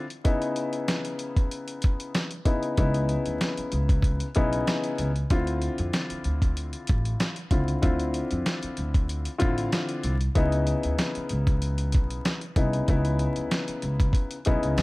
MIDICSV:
0, 0, Header, 1, 5, 480
1, 0, Start_track
1, 0, Tempo, 631579
1, 190, Time_signature, 4, 2, 24, 8
1, 11267, End_track
2, 0, Start_track
2, 0, Title_t, "Grand piano"
2, 0, Program_c, 0, 0
2, 185, Note_on_c, 0, 49, 84
2, 186, Note_on_c, 0, 59, 85
2, 189, Note_on_c, 0, 63, 88
2, 192, Note_on_c, 0, 64, 93
2, 1742, Note_off_c, 0, 49, 0
2, 1742, Note_off_c, 0, 59, 0
2, 1744, Note_off_c, 0, 63, 0
2, 1745, Note_off_c, 0, 64, 0
2, 1863, Note_on_c, 0, 49, 70
2, 1865, Note_on_c, 0, 59, 75
2, 1867, Note_on_c, 0, 63, 70
2, 1869, Note_on_c, 0, 64, 81
2, 2089, Note_off_c, 0, 49, 0
2, 2090, Note_off_c, 0, 59, 0
2, 2091, Note_off_c, 0, 63, 0
2, 2092, Note_off_c, 0, 64, 0
2, 2112, Note_on_c, 0, 49, 77
2, 2115, Note_on_c, 0, 59, 89
2, 2117, Note_on_c, 0, 63, 78
2, 2119, Note_on_c, 0, 64, 102
2, 3223, Note_off_c, 0, 49, 0
2, 3224, Note_off_c, 0, 59, 0
2, 3225, Note_off_c, 0, 63, 0
2, 3227, Note_off_c, 0, 64, 0
2, 3310, Note_on_c, 0, 49, 92
2, 3311, Note_on_c, 0, 59, 91
2, 3314, Note_on_c, 0, 63, 92
2, 3316, Note_on_c, 0, 64, 99
2, 3868, Note_off_c, 0, 49, 0
2, 3869, Note_off_c, 0, 59, 0
2, 3870, Note_off_c, 0, 63, 0
2, 3871, Note_off_c, 0, 64, 0
2, 4032, Note_on_c, 0, 50, 88
2, 4035, Note_on_c, 0, 60, 87
2, 4037, Note_on_c, 0, 64, 80
2, 4039, Note_on_c, 0, 65, 102
2, 5585, Note_off_c, 0, 50, 0
2, 5587, Note_off_c, 0, 60, 0
2, 5588, Note_off_c, 0, 64, 0
2, 5589, Note_off_c, 0, 65, 0
2, 5707, Note_on_c, 0, 50, 77
2, 5710, Note_on_c, 0, 60, 73
2, 5712, Note_on_c, 0, 64, 64
2, 5715, Note_on_c, 0, 65, 81
2, 5931, Note_off_c, 0, 50, 0
2, 5932, Note_off_c, 0, 60, 0
2, 5933, Note_off_c, 0, 64, 0
2, 5935, Note_off_c, 0, 65, 0
2, 5943, Note_on_c, 0, 50, 84
2, 5945, Note_on_c, 0, 60, 90
2, 5947, Note_on_c, 0, 64, 83
2, 5949, Note_on_c, 0, 65, 96
2, 7058, Note_off_c, 0, 50, 0
2, 7059, Note_off_c, 0, 60, 0
2, 7060, Note_off_c, 0, 64, 0
2, 7062, Note_off_c, 0, 65, 0
2, 7133, Note_on_c, 0, 50, 99
2, 7134, Note_on_c, 0, 60, 91
2, 7136, Note_on_c, 0, 64, 79
2, 7139, Note_on_c, 0, 65, 114
2, 7699, Note_off_c, 0, 50, 0
2, 7700, Note_off_c, 0, 60, 0
2, 7701, Note_off_c, 0, 64, 0
2, 7702, Note_off_c, 0, 65, 0
2, 7866, Note_on_c, 0, 49, 85
2, 7868, Note_on_c, 0, 59, 85
2, 7870, Note_on_c, 0, 63, 91
2, 7872, Note_on_c, 0, 64, 92
2, 9422, Note_off_c, 0, 49, 0
2, 9423, Note_off_c, 0, 59, 0
2, 9424, Note_off_c, 0, 63, 0
2, 9425, Note_off_c, 0, 64, 0
2, 9545, Note_on_c, 0, 49, 69
2, 9547, Note_on_c, 0, 59, 76
2, 9550, Note_on_c, 0, 63, 72
2, 9551, Note_on_c, 0, 64, 81
2, 9770, Note_off_c, 0, 49, 0
2, 9771, Note_off_c, 0, 59, 0
2, 9772, Note_off_c, 0, 63, 0
2, 9773, Note_off_c, 0, 64, 0
2, 9793, Note_on_c, 0, 49, 79
2, 9795, Note_on_c, 0, 59, 89
2, 9797, Note_on_c, 0, 63, 80
2, 9800, Note_on_c, 0, 64, 99
2, 10903, Note_off_c, 0, 49, 0
2, 10904, Note_off_c, 0, 59, 0
2, 10905, Note_off_c, 0, 63, 0
2, 10907, Note_off_c, 0, 64, 0
2, 10988, Note_on_c, 0, 49, 93
2, 10990, Note_on_c, 0, 59, 85
2, 10993, Note_on_c, 0, 63, 92
2, 10995, Note_on_c, 0, 64, 99
2, 11267, Note_off_c, 0, 49, 0
2, 11267, Note_off_c, 0, 59, 0
2, 11267, Note_off_c, 0, 63, 0
2, 11267, Note_off_c, 0, 64, 0
2, 11267, End_track
3, 0, Start_track
3, 0, Title_t, "Upright bass"
3, 0, Program_c, 1, 32
3, 2112, Note_on_c, 1, 37, 102
3, 2389, Note_off_c, 1, 37, 0
3, 2481, Note_on_c, 1, 38, 87
3, 2564, Note_off_c, 1, 38, 0
3, 2831, Note_on_c, 1, 37, 86
3, 3191, Note_off_c, 1, 37, 0
3, 3320, Note_on_c, 1, 35, 85
3, 3497, Note_off_c, 1, 35, 0
3, 3791, Note_on_c, 1, 37, 91
3, 3971, Note_off_c, 1, 37, 0
3, 4032, Note_on_c, 1, 38, 110
3, 4309, Note_off_c, 1, 38, 0
3, 4401, Note_on_c, 1, 41, 91
3, 4483, Note_off_c, 1, 41, 0
3, 4751, Note_on_c, 1, 38, 89
3, 5111, Note_off_c, 1, 38, 0
3, 5239, Note_on_c, 1, 33, 96
3, 5416, Note_off_c, 1, 33, 0
3, 5707, Note_on_c, 1, 37, 93
3, 5888, Note_off_c, 1, 37, 0
3, 5952, Note_on_c, 1, 38, 106
3, 6229, Note_off_c, 1, 38, 0
3, 6321, Note_on_c, 1, 41, 91
3, 6403, Note_off_c, 1, 41, 0
3, 6672, Note_on_c, 1, 38, 87
3, 7032, Note_off_c, 1, 38, 0
3, 7159, Note_on_c, 1, 33, 87
3, 7336, Note_off_c, 1, 33, 0
3, 7631, Note_on_c, 1, 36, 88
3, 7811, Note_off_c, 1, 36, 0
3, 7871, Note_on_c, 1, 37, 107
3, 8149, Note_off_c, 1, 37, 0
3, 8241, Note_on_c, 1, 38, 83
3, 8324, Note_off_c, 1, 38, 0
3, 8591, Note_on_c, 1, 37, 94
3, 9079, Note_off_c, 1, 37, 0
3, 9079, Note_on_c, 1, 35, 86
3, 9256, Note_off_c, 1, 35, 0
3, 9547, Note_on_c, 1, 36, 95
3, 9728, Note_off_c, 1, 36, 0
3, 9792, Note_on_c, 1, 37, 113
3, 10069, Note_off_c, 1, 37, 0
3, 10161, Note_on_c, 1, 38, 92
3, 10243, Note_off_c, 1, 38, 0
3, 10510, Note_on_c, 1, 37, 89
3, 10691, Note_off_c, 1, 37, 0
3, 10999, Note_on_c, 1, 35, 92
3, 11093, Note_off_c, 1, 35, 0
3, 11119, Note_on_c, 1, 37, 88
3, 11202, Note_off_c, 1, 37, 0
3, 11229, Note_on_c, 1, 49, 96
3, 11267, Note_off_c, 1, 49, 0
3, 11267, End_track
4, 0, Start_track
4, 0, Title_t, "Muted upright bass strokes"
4, 2721, Note_on_c, 9, 29, 49
4, 2797, Note_off_c, 9, 29, 0
4, 4640, Note_on_c, 9, 29, 50
4, 4716, Note_off_c, 9, 29, 0
4, 6562, Note_on_c, 9, 29, 48
4, 6638, Note_off_c, 9, 29, 0
4, 8481, Note_on_c, 9, 29, 48
4, 8557, Note_off_c, 9, 29, 0
4, 10401, Note_on_c, 9, 29, 49
4, 10477, Note_off_c, 9, 29, 0
4, 11267, End_track
5, 0, Start_track
5, 0, Title_t, "Drums"
5, 78, Note_on_c, 9, 42, 42
5, 154, Note_off_c, 9, 42, 0
5, 189, Note_on_c, 9, 42, 96
5, 191, Note_on_c, 9, 36, 120
5, 265, Note_off_c, 9, 42, 0
5, 267, Note_off_c, 9, 36, 0
5, 317, Note_on_c, 9, 42, 52
5, 393, Note_off_c, 9, 42, 0
5, 426, Note_on_c, 9, 42, 70
5, 502, Note_off_c, 9, 42, 0
5, 553, Note_on_c, 9, 42, 49
5, 629, Note_off_c, 9, 42, 0
5, 669, Note_on_c, 9, 42, 105
5, 671, Note_on_c, 9, 38, 119
5, 745, Note_off_c, 9, 42, 0
5, 747, Note_off_c, 9, 38, 0
5, 796, Note_on_c, 9, 42, 59
5, 872, Note_off_c, 9, 42, 0
5, 904, Note_on_c, 9, 42, 67
5, 980, Note_off_c, 9, 42, 0
5, 1037, Note_on_c, 9, 36, 101
5, 1040, Note_on_c, 9, 42, 59
5, 1113, Note_off_c, 9, 36, 0
5, 1116, Note_off_c, 9, 42, 0
5, 1150, Note_on_c, 9, 42, 87
5, 1226, Note_off_c, 9, 42, 0
5, 1274, Note_on_c, 9, 42, 63
5, 1350, Note_off_c, 9, 42, 0
5, 1382, Note_on_c, 9, 42, 88
5, 1399, Note_on_c, 9, 36, 97
5, 1458, Note_off_c, 9, 42, 0
5, 1475, Note_off_c, 9, 36, 0
5, 1519, Note_on_c, 9, 42, 64
5, 1595, Note_off_c, 9, 42, 0
5, 1631, Note_on_c, 9, 42, 96
5, 1633, Note_on_c, 9, 38, 117
5, 1707, Note_off_c, 9, 42, 0
5, 1709, Note_off_c, 9, 38, 0
5, 1753, Note_on_c, 9, 42, 51
5, 1829, Note_off_c, 9, 42, 0
5, 1866, Note_on_c, 9, 36, 92
5, 1866, Note_on_c, 9, 42, 89
5, 1942, Note_off_c, 9, 36, 0
5, 1942, Note_off_c, 9, 42, 0
5, 1996, Note_on_c, 9, 42, 41
5, 2072, Note_off_c, 9, 42, 0
5, 2109, Note_on_c, 9, 42, 95
5, 2111, Note_on_c, 9, 36, 114
5, 2185, Note_off_c, 9, 42, 0
5, 2187, Note_off_c, 9, 36, 0
5, 2237, Note_on_c, 9, 42, 51
5, 2313, Note_off_c, 9, 42, 0
5, 2347, Note_on_c, 9, 42, 70
5, 2423, Note_off_c, 9, 42, 0
5, 2474, Note_on_c, 9, 42, 50
5, 2550, Note_off_c, 9, 42, 0
5, 2590, Note_on_c, 9, 42, 104
5, 2592, Note_on_c, 9, 38, 112
5, 2666, Note_off_c, 9, 42, 0
5, 2668, Note_off_c, 9, 38, 0
5, 2717, Note_on_c, 9, 42, 59
5, 2793, Note_off_c, 9, 42, 0
5, 2825, Note_on_c, 9, 42, 65
5, 2901, Note_off_c, 9, 42, 0
5, 2958, Note_on_c, 9, 36, 103
5, 2961, Note_on_c, 9, 42, 60
5, 3034, Note_off_c, 9, 36, 0
5, 3037, Note_off_c, 9, 42, 0
5, 3059, Note_on_c, 9, 36, 93
5, 3072, Note_on_c, 9, 42, 84
5, 3135, Note_off_c, 9, 36, 0
5, 3148, Note_off_c, 9, 42, 0
5, 3194, Note_on_c, 9, 42, 61
5, 3270, Note_off_c, 9, 42, 0
5, 3303, Note_on_c, 9, 42, 83
5, 3319, Note_on_c, 9, 36, 100
5, 3379, Note_off_c, 9, 42, 0
5, 3395, Note_off_c, 9, 36, 0
5, 3440, Note_on_c, 9, 42, 61
5, 3516, Note_off_c, 9, 42, 0
5, 3552, Note_on_c, 9, 42, 91
5, 3554, Note_on_c, 9, 38, 116
5, 3628, Note_off_c, 9, 42, 0
5, 3630, Note_off_c, 9, 38, 0
5, 3675, Note_on_c, 9, 42, 50
5, 3751, Note_off_c, 9, 42, 0
5, 3788, Note_on_c, 9, 42, 90
5, 3864, Note_off_c, 9, 42, 0
5, 3919, Note_on_c, 9, 42, 44
5, 3995, Note_off_c, 9, 42, 0
5, 4030, Note_on_c, 9, 42, 95
5, 4032, Note_on_c, 9, 36, 115
5, 4106, Note_off_c, 9, 42, 0
5, 4108, Note_off_c, 9, 36, 0
5, 4158, Note_on_c, 9, 42, 52
5, 4234, Note_off_c, 9, 42, 0
5, 4268, Note_on_c, 9, 42, 74
5, 4344, Note_off_c, 9, 42, 0
5, 4394, Note_on_c, 9, 42, 49
5, 4470, Note_off_c, 9, 42, 0
5, 4510, Note_on_c, 9, 42, 102
5, 4512, Note_on_c, 9, 38, 111
5, 4586, Note_off_c, 9, 42, 0
5, 4588, Note_off_c, 9, 38, 0
5, 4637, Note_on_c, 9, 42, 59
5, 4713, Note_off_c, 9, 42, 0
5, 4745, Note_on_c, 9, 42, 65
5, 4821, Note_off_c, 9, 42, 0
5, 4878, Note_on_c, 9, 36, 99
5, 4881, Note_on_c, 9, 42, 58
5, 4954, Note_off_c, 9, 36, 0
5, 4957, Note_off_c, 9, 42, 0
5, 4992, Note_on_c, 9, 42, 85
5, 5068, Note_off_c, 9, 42, 0
5, 5114, Note_on_c, 9, 42, 62
5, 5190, Note_off_c, 9, 42, 0
5, 5223, Note_on_c, 9, 42, 83
5, 5239, Note_on_c, 9, 36, 98
5, 5299, Note_off_c, 9, 42, 0
5, 5315, Note_off_c, 9, 36, 0
5, 5360, Note_on_c, 9, 42, 62
5, 5436, Note_off_c, 9, 42, 0
5, 5472, Note_on_c, 9, 42, 95
5, 5474, Note_on_c, 9, 38, 114
5, 5548, Note_off_c, 9, 42, 0
5, 5550, Note_off_c, 9, 38, 0
5, 5594, Note_on_c, 9, 42, 51
5, 5670, Note_off_c, 9, 42, 0
5, 5706, Note_on_c, 9, 42, 90
5, 5707, Note_on_c, 9, 36, 91
5, 5782, Note_off_c, 9, 42, 0
5, 5783, Note_off_c, 9, 36, 0
5, 5837, Note_on_c, 9, 42, 43
5, 5913, Note_off_c, 9, 42, 0
5, 5948, Note_on_c, 9, 42, 97
5, 5951, Note_on_c, 9, 36, 113
5, 6024, Note_off_c, 9, 42, 0
5, 6027, Note_off_c, 9, 36, 0
5, 6077, Note_on_c, 9, 42, 51
5, 6153, Note_off_c, 9, 42, 0
5, 6187, Note_on_c, 9, 42, 71
5, 6263, Note_off_c, 9, 42, 0
5, 6313, Note_on_c, 9, 42, 49
5, 6389, Note_off_c, 9, 42, 0
5, 6429, Note_on_c, 9, 42, 101
5, 6431, Note_on_c, 9, 38, 118
5, 6505, Note_off_c, 9, 42, 0
5, 6507, Note_off_c, 9, 38, 0
5, 6556, Note_on_c, 9, 42, 58
5, 6632, Note_off_c, 9, 42, 0
5, 6664, Note_on_c, 9, 42, 65
5, 6740, Note_off_c, 9, 42, 0
5, 6797, Note_on_c, 9, 36, 103
5, 6800, Note_on_c, 9, 42, 60
5, 6873, Note_off_c, 9, 36, 0
5, 6876, Note_off_c, 9, 42, 0
5, 6911, Note_on_c, 9, 42, 87
5, 6987, Note_off_c, 9, 42, 0
5, 7033, Note_on_c, 9, 42, 64
5, 7109, Note_off_c, 9, 42, 0
5, 7142, Note_on_c, 9, 42, 88
5, 7159, Note_on_c, 9, 36, 101
5, 7218, Note_off_c, 9, 42, 0
5, 7235, Note_off_c, 9, 36, 0
5, 7279, Note_on_c, 9, 42, 62
5, 7355, Note_off_c, 9, 42, 0
5, 7391, Note_on_c, 9, 42, 95
5, 7393, Note_on_c, 9, 38, 120
5, 7467, Note_off_c, 9, 42, 0
5, 7469, Note_off_c, 9, 38, 0
5, 7514, Note_on_c, 9, 42, 51
5, 7590, Note_off_c, 9, 42, 0
5, 7626, Note_on_c, 9, 42, 87
5, 7702, Note_off_c, 9, 42, 0
5, 7757, Note_on_c, 9, 42, 43
5, 7833, Note_off_c, 9, 42, 0
5, 7869, Note_on_c, 9, 42, 92
5, 7871, Note_on_c, 9, 36, 115
5, 7945, Note_off_c, 9, 42, 0
5, 7947, Note_off_c, 9, 36, 0
5, 7997, Note_on_c, 9, 42, 51
5, 8073, Note_off_c, 9, 42, 0
5, 8107, Note_on_c, 9, 42, 70
5, 8183, Note_off_c, 9, 42, 0
5, 8233, Note_on_c, 9, 42, 51
5, 8309, Note_off_c, 9, 42, 0
5, 8349, Note_on_c, 9, 42, 107
5, 8351, Note_on_c, 9, 38, 113
5, 8425, Note_off_c, 9, 42, 0
5, 8427, Note_off_c, 9, 38, 0
5, 8475, Note_on_c, 9, 42, 59
5, 8551, Note_off_c, 9, 42, 0
5, 8583, Note_on_c, 9, 42, 68
5, 8659, Note_off_c, 9, 42, 0
5, 8717, Note_on_c, 9, 36, 101
5, 8719, Note_on_c, 9, 42, 58
5, 8793, Note_off_c, 9, 36, 0
5, 8795, Note_off_c, 9, 42, 0
5, 8830, Note_on_c, 9, 42, 87
5, 8906, Note_off_c, 9, 42, 0
5, 8953, Note_on_c, 9, 42, 62
5, 9029, Note_off_c, 9, 42, 0
5, 9062, Note_on_c, 9, 42, 87
5, 9079, Note_on_c, 9, 36, 96
5, 9138, Note_off_c, 9, 42, 0
5, 9155, Note_off_c, 9, 36, 0
5, 9199, Note_on_c, 9, 42, 62
5, 9275, Note_off_c, 9, 42, 0
5, 9311, Note_on_c, 9, 42, 93
5, 9313, Note_on_c, 9, 38, 118
5, 9387, Note_off_c, 9, 42, 0
5, 9389, Note_off_c, 9, 38, 0
5, 9434, Note_on_c, 9, 42, 53
5, 9510, Note_off_c, 9, 42, 0
5, 9546, Note_on_c, 9, 36, 94
5, 9546, Note_on_c, 9, 42, 89
5, 9622, Note_off_c, 9, 36, 0
5, 9622, Note_off_c, 9, 42, 0
5, 9677, Note_on_c, 9, 42, 43
5, 9753, Note_off_c, 9, 42, 0
5, 9789, Note_on_c, 9, 42, 99
5, 9791, Note_on_c, 9, 36, 116
5, 9865, Note_off_c, 9, 42, 0
5, 9867, Note_off_c, 9, 36, 0
5, 9916, Note_on_c, 9, 42, 53
5, 9992, Note_off_c, 9, 42, 0
5, 10027, Note_on_c, 9, 42, 70
5, 10103, Note_off_c, 9, 42, 0
5, 10153, Note_on_c, 9, 42, 50
5, 10229, Note_off_c, 9, 42, 0
5, 10269, Note_on_c, 9, 42, 102
5, 10272, Note_on_c, 9, 38, 117
5, 10345, Note_off_c, 9, 42, 0
5, 10348, Note_off_c, 9, 38, 0
5, 10395, Note_on_c, 9, 42, 60
5, 10471, Note_off_c, 9, 42, 0
5, 10505, Note_on_c, 9, 42, 70
5, 10581, Note_off_c, 9, 42, 0
5, 10637, Note_on_c, 9, 36, 102
5, 10640, Note_on_c, 9, 42, 60
5, 10713, Note_off_c, 9, 36, 0
5, 10716, Note_off_c, 9, 42, 0
5, 10738, Note_on_c, 9, 36, 94
5, 10750, Note_on_c, 9, 42, 87
5, 10814, Note_off_c, 9, 36, 0
5, 10826, Note_off_c, 9, 42, 0
5, 10873, Note_on_c, 9, 42, 62
5, 10949, Note_off_c, 9, 42, 0
5, 10981, Note_on_c, 9, 42, 85
5, 10999, Note_on_c, 9, 36, 96
5, 11057, Note_off_c, 9, 42, 0
5, 11075, Note_off_c, 9, 36, 0
5, 11119, Note_on_c, 9, 42, 64
5, 11195, Note_off_c, 9, 42, 0
5, 11230, Note_on_c, 9, 42, 96
5, 11233, Note_on_c, 9, 38, 118
5, 11267, Note_off_c, 9, 38, 0
5, 11267, Note_off_c, 9, 42, 0
5, 11267, End_track
0, 0, End_of_file